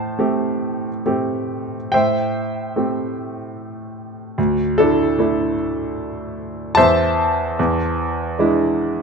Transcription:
Already playing: A2 C5 A5
0.19 A3 C4 G4
1.06 A3 C4 G4
1.92 A2 C5 E5 G5
2.76 A3 C4 G4
4.38 D2
4.78 D4 E4 A4
5.19 A3 D4 E4
6.75 E2 C5 E5 A5
7.59 E2
8.39 G#3 D4 E4

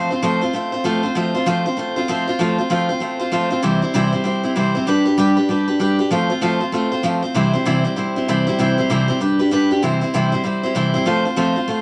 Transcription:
Already playing: F3 A3 C4 F4
0.10 C4 F4 C5
0.22 F3 A3 C4 F4 C5
0.41 C4 F4 C5
0.53 A3 C4 F4 C5
0.72 C4 F4 C5
0.84 F3 A3 C4 F4 C5
1.03 C4 F4 C5
1.15 F3 A3 C4 F4 C5
1.34 C4 F4 C5
1.46 F3 A3 C4 F4 C5
1.66 C4 F4 C5
1.77 A3 C4 F4 C5
1.96 C4 F4 C5
2.08 F3 A3 C4 F4 C5
2.27 C4 F4 C5
2.39 F3 A3 C4 F4 C5
2.58 C4 F4 C5
2.70 F3 A3 C4 F4 C5
2.89 C4 F4 C5
3.00 A3 C4 F4 C5
3.19 C4 F4 C5
3.32 F3 A3 C4 F4 C5
3.50 C4 F4 C5
3.62 C3 E3 G3 C4 E4 C5
3.82 G3 C4 E4 C5
3.94 C3 E3 G3 C4 E4 C5
4.12 G3 C4 E4 C5
4.24 G3 C4 E4 C5
4.43 G3 C4 E4 C5
4.55 C3 E3 G3 C4 E4 C5
4.75 G3 C4 E4 C5
4.87 G3 D4 G4 B4
5.05 D4 G4 B4
5.18 G3 D4 G4 B4
5.37 D4 G4 B4
5.49 G3 D4 G4 B4
5.68 D4 G4 B4
5.79 G3 D4 G4 B4
5.99 D4 G4 B4
6.11 F3 A3 C4 F4 C5
6.30 C4 F4 C5
6.41 F3 A3 C4 F4 C5
6.60 C4 F4 C5
6.72 A3 C4 F4 C5
6.92 C4 F4 C5
7.03 F3 A3 C4 F4 C5
7.22 C4 F4 C5
7.34 C3 E3 G3 C4 E4 C5
7.53 G3 C4 E4 C5
7.65 C3 E3 G3 C4 E4 C5
7.84 G3 C4 E4 C5
7.96 G3 C4 E4 C5
8.16 G3 C4 E4 C5
8.28 C3 E3 G3 C4 E4 C5
8.47 G3 C4 E4 C5
8.59 C3 E3 G3 C4 E4 C5
8.78 G3 C4 E4 C5
8.90 C3 E3 G3 C4 E4 C5
9.08 G3 C4 E4 C5
9.20 G3 D4 G4 B4
9.39 D4 G4 B4
9.51 G3 D4 G4 B4
9.71 D4 G4 B4
9.82 C3 E3 G3 C4 E4 C5
10.01 G3 C4 E4 C5
10.14 C3 E3 G3 C4 E4 C5
10.32 G3 C4 E4 C5
10.44 G3 C4 E4 C5
10.63 G3 C4 E4 C5
10.75 C3 E3 G3 C4 E4 C5
10.94 G3 C4 E4 C5
11.05 F3 A3 C4 F4 C5
11.25 C4 F4 C5
11.36 F3 A3 C4 F4 C5
11.56 C4 F4 C5
11.68 A3 C4 F4 C5

